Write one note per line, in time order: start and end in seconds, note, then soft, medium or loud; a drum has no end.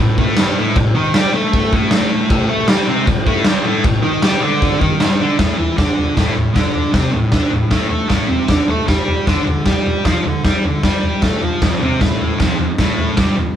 0.00 0.15 A2 medium
0.18 0.37 A2 medium
0.18 0.37 A3 loud
0.18 kick loud
0.37 0.57 G2 loud
0.37 0.57 G3 loud
0.37 snare loud
0.37 crash medium
0.58 0.76 A2 medium
0.58 0.76 A3 loud
0.76 0.92 A2 medium
0.76 kick loud
0.76 crash medium
0.95 1.14 D#3 medium
0.95 1.15 D#4 loud
1.14 1.33 G3 medium
1.14 1.34 G4 medium
1.14 snare loud
1.14 crash medium
1.34 1.72 A3 loud
1.34 1.72 A4 loud
1.53 kick loud
1.53 crash medium
1.73 2.29 A2 loud
1.73 2.30 A3 medium
1.73 kick loud
1.91 snare loud
1.91 crash medium
2.30 2.49 A2 loud
2.30 2.47 A3 loud
2.30 kick loud
2.30 crash medium
2.49 2.67 A3 loud
2.49 2.68 A4 loud
2.68 2.87 G3 medium
2.68 2.88 G4 medium
2.68 snare loud
2.68 crash medium
2.87 3.06 C3 loud
2.87 3.06 C4 loud
3.07 3.22 A2 medium
3.07 kick loud
3.07 crash medium
3.26 3.45 A2 medium
3.26 3.45 A3 loud
3.26 kick medium
3.45 3.64 G2 medium
3.45 3.64 G3 loud
3.45 snare loud
3.45 crash medium
3.64 3.83 A2 medium
3.64 3.84 A3 medium
3.84 4.00 A2 medium
3.84 kick loud
3.84 crash medium
4.03 4.22 D#3 medium
4.03 4.22 D#4 loud
4.22 4.41 G3 medium
4.22 4.42 G4 loud
4.22 snare loud
4.22 crash medium
4.41 4.79 D3 loud
4.41 4.80 D4 loud
4.62 kick loud
4.62 crash medium
4.80 4.99 D#3 medium
4.80 5.00 D#4 medium
4.80 kick medium
5.00 5.19 G2 medium
5.00 5.19 G3 loud
5.00 snare loud
5.00 crash medium
5.21 5.38 D3 medium
5.21 5.39 D4 medium
5.38 5.57 A2 medium
5.38 5.58 A3 medium
5.38 kick loud
5.38 snare loud
5.38 floor tom medium
5.58 5.76 E3 medium
5.58 5.77 E4 medium
5.58 floor tom medium
5.77 6.15 D3 medium
5.77 6.16 D4 medium
5.77 kick loud
5.77 snare loud
5.77 floor tom medium
5.98 floor tom medium
6.16 6.35 A2 medium
6.16 6.36 A3 medium
6.16 kick medium
6.16 snare loud
6.16 floor tom medium
6.36 6.51 A2 medium
6.36 floor tom medium
6.55 6.92 D3 medium
6.55 6.93 D4 loud
6.55 kick medium
6.55 snare loud
6.55 floor tom medium
6.75 floor tom medium
6.93 7.12 C3 medium
6.93 7.12 C4 medium
6.93 kick loud
6.93 snare loud
6.93 floor tom medium
7.12 7.28 A2 medium
7.12 floor tom medium
7.32 7.51 D3 medium
7.32 7.52 D4 medium
7.32 kick loud
7.32 snare loud
7.32 floor tom medium
7.51 7.67 A2 medium
7.51 floor tom medium
7.70 7.90 A2 loud
7.70 7.88 A3 loud
7.70 kick loud
7.70 snare loud
7.70 floor tom medium
7.89 8.07 A3 medium
7.89 8.09 A4 medium
7.89 floor tom medium
8.08 8.28 A2 medium
8.08 8.28 A3 loud
8.08 kick loud
8.08 snare loud
8.08 floor tom medium
8.29 8.48 C3 medium
8.29 8.49 C4 medium
8.29 floor tom medium
8.48 8.68 D3 medium
8.48 8.68 D4 medium
8.48 kick loud
8.48 snare loud
8.48 floor tom medium
8.68 8.87 A3 medium
8.68 8.88 A4 medium
8.68 floor tom medium
8.87 9.26 G3 medium
8.87 9.26 G4 medium
8.87 kick loud
8.87 snare loud
8.87 floor tom medium
9.08 floor tom medium
9.26 9.44 D3 medium
9.26 9.46 D4 loud
9.26 kick loud
9.26 snare medium
9.26 floor tom medium
9.45 9.62 D3 medium
9.45 floor tom medium
9.65 10.04 G3 medium
9.65 10.04 G4 loud
9.65 kick loud
9.65 snare loud
9.65 floor tom medium
9.86 floor tom medium
10.04 10.24 F3 medium
10.04 10.24 F4 medium
10.04 kick loud
10.04 snare loud
10.04 floor tom medium
10.25 10.41 D3 medium
10.25 floor tom medium
10.44 10.63 G3 medium
10.44 10.64 G4 medium
10.44 kick loud
10.44 snare loud
10.44 floor tom medium
10.64 10.80 D3 medium
10.64 floor tom medium
10.83 11.21 G3 loud
10.83 11.22 G4 loud
10.83 kick loud
10.83 snare loud
10.83 floor tom medium
11.03 floor tom medium
11.22 11.41 A3 medium
11.22 11.42 A4 loud
11.22 kick loud
11.22 snare loud
11.22 floor tom medium
11.42 11.61 F3 medium
11.42 11.61 F4 medium
11.42 floor tom medium
11.61 11.80 F2 medium
11.61 11.80 F3 medium
11.61 kick loud
11.61 snare loud
11.61 floor tom medium
11.81 12.00 C3 medium
11.81 12.01 C4 loud
11.81 floor tom medium
12.01 12.39 A2 medium
12.01 12.39 A3 medium
12.01 kick loud
12.01 snare loud
12.01 floor tom medium
12.21 floor tom medium
12.38 12.58 F2 loud
12.38 12.58 F3 loud
12.38 kick loud
12.38 snare loud
12.38 floor tom medium
12.59 12.74 F2 medium
12.59 floor tom medium
12.78 13.17 A2 medium
12.78 13.17 A3 loud
12.78 kick loud
12.78 snare loud
12.78 floor tom medium
12.98 floor tom medium
13.17 13.36 G2 medium
13.17 13.36 G3 loud
13.17 kick loud
13.17 snare loud
13.17 floor tom medium
13.37 13.52 F2 medium
13.37 floor tom medium